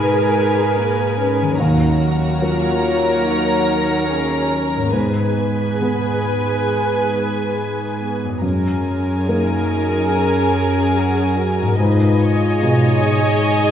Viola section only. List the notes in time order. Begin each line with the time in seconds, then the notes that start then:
Already playing: G#4 A#4
1.61 F#3 A#4
4.94 G#4 B4
8.42 G#4 A#4
11.79 G#4 D#5